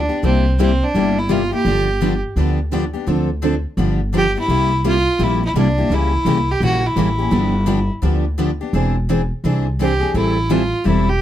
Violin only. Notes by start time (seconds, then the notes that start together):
Already playing: D4
0.25 C4
0.61 C4
0.83 D4
1.18 E4
1.31 F4
1.54 G4
4.17 G4
4.39 E4
4.87 F4
5.23 E4
5.45 E4
5.58 D4
5.94 E4
6.51 G4
6.64 F#4
6.86 E4
9.82 G4
10.17 E4
10.52 F4
10.87 E4
11.09 G4